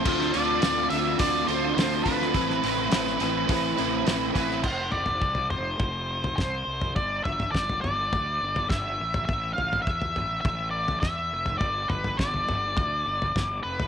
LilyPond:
<<
  \new Staff \with { instrumentName = "Tonewheel organ" } { \time 4/4 \key a \minor \tempo 4 = 103 << { <d'' f'' c'''>1 | <c' e'' b''>1 | r1 | r1 |
r1 | r1 | } \\ { a'1~ | a'1 | r1 | r1 |
r1 | r1 | } >> }
  \new Staff \with { instrumentName = "Lead electric guitar" } { \time 4/4 \key a \minor c''8 d''4 e''8 d''8 c''8 c''8 b'8~ | b'2.~ b'8 b'8 | c''8 d''4 c''4. c''4 | d''8 e''8 d''8 d''4. e''4 |
e''8 f''8 e''4 e''8 d''8 e''4 | d''8 b'8 d''2~ d''8 b'8 | }
  \new Staff \with { instrumentName = "Clean electric guitar" } { \time 4/4 \key a \minor <c' f' a'>8 <c' f' a'>8 <c' f' a'>8 <c' f' a'>8 <c' f' a'>8 <c' f' a'>8 <c' f' a'>8 <c' f' a'>8 | <c' e' b'>8 <c' e' b'>8 <c' e' b'>8 <c' e' b'>8 <c' e' b'>8 <c' e' b'>8 <c' e' b'>8 <c' e' b'>8 | r1 | r1 |
r1 | r1 | }
  \new Staff \with { instrumentName = "Overdriven electric guitar" } { \time 4/4 \key a \minor <d a d' f'>8 <d a d' f'>8 <d a d' f'>8 <d a d' f'>8 <d a d' f'>8 <d a d' f'>8 <d a d' f'>8 <d a d' f'>8 | <a, e a c' e'>8 <a, e a c' e'>8 <a, e a c' e'>8 <a, e a c' e'>8 <a, e a c' e'>8 <a, e a c' e'>8 <a, e a c' e'>8 <a, e a c' e'>8 | r1 | r1 |
r1 | r1 | }
  \new Staff \with { instrumentName = "Fingered electric bass" } { \clef bass \time 4/4 \key a \minor d,8 d,8 d,8 d,8 d,8 d,8 d,8 d,8 | a,,8 a,,8 a,,8 a,,8 a,,8 a,,8 a,,8 a,,8 | f,,8 f,,8 c,8 f,,8 f,,4 c,8 c,8 | g,,8 g,,8 g,,8 g,,8 d,8 g,,8 g,,8 a,,8 |
a,,8 a,,8 e,8 a,,8 a,,4 e,8 f,,8 | g,,8 g,,8 g,,8 g,,8 d,8 g,,8 g,,8 f,,8 | }
  \new DrumStaff \with { instrumentName = "Drums" } \drummode { \time 4/4 <cymc bd>16 sn16 hho8 <hho sn>8 hho8 <hho bd>8 hho8 <hho sn>8 <hho bd>16 sn16 | <hho bd>16 sn16 hho8 <hho sn>16 sn16 hho8 <hho bd>8 hho8 <hho sn>8 <hho bd>16 sn16 | <cymc bd tomfh>8 tomfh16 tomfh16 bd16 tomfh16 <tomfh toml>8 <bd tomfh>8. tomfh16 <bd sn tomfh toml>8. <tomfh toml>16 | <bd tomfh>8 <tomfh toml>16 tomfh16 <bd sn>16 tomfh16 <tomfh toml>8 <bd tomfh>8. tomfh16 <bd sn tomfh toml>8. <tomfh toml>16 |
<bd tomfh>8 tomfh16 tomfh16 bd16 tomfh16 <tomfh toml>8 <bd tomfh>8. tomfh16 <bd sn tomfh toml>8. <tomfh toml>16 | <bd tomfh>8 <tomfh toml>16 tomfh16 <bd sn>16 tomfh16 <tomfh toml>8 <bd tomfh>8. tomfh16 <bd sn tomfh toml>8. <tomfh toml>16 | }
>>